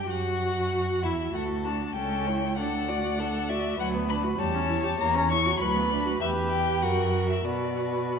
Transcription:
Already playing: G5
0.09 F#2 F#4 F#5
1.03 E2 E4 E5
1.33 D2 F#4 A4 F#5
1.65 D4 F#4 A5
1.95 C#2 C#4 A4 G5
2.27 E4 C#5
2.57 D2 D4 A4 F#5
2.89 F#4 D5
3.19 D4 A4
3.49 F#4 D5 E5
3.79 D2 F#3 B4 F#5
3.94 B3
4.09 D4 B5
4.24 F#4
4.39 E2 G3 C#5 A5
4.54 C#4
4.69 E4
4.84 G4
5.00 E2 A#3 A#5
5.16 C#4
5.30 E4 C#6
5.46 F#4
5.60 D2 F#3 B4 B5
5.76 B3
5.91 D4
6.06 F#4
6.21 E2 G4 B4 E5
6.50 G5
6.82 F#2 F#4 A#4 F#5
7.30 E5
7.45 B2 F#4 B4 D5

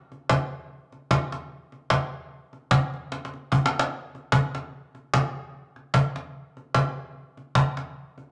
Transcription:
0.12 cajon slap
0.29 cajon bass, cajon slap
0.92 cajon slap
1.11 cajon bass, cajon slap
1.32 cajon slap
1.72 cajon slap
1.90 cajon bass, cajon slap
2.53 cajon slap
2.71 cajon bass, cajon slap
2.94 cajon slap
3.12 cajon slap
3.25 cajon slap
3.34 cajon slap
3.52 cajon bass, cajon slap
3.66 cajon slap
3.75 cajon slap
3.79 cajon slap
4.15 cajon slap
4.32 cajon bass, cajon slap
4.55 cajon slap
4.95 cajon slap
5.14 cajon bass, cajon slap
5.76 cajon slap
5.94 cajon bass, cajon slap
6.16 cajon slap
6.57 cajon slap
6.74 cajon bass, cajon slap
7.37 cajon slap
7.55 cajon bass, cajon slap
7.77 cajon slap
8.18 cajon slap

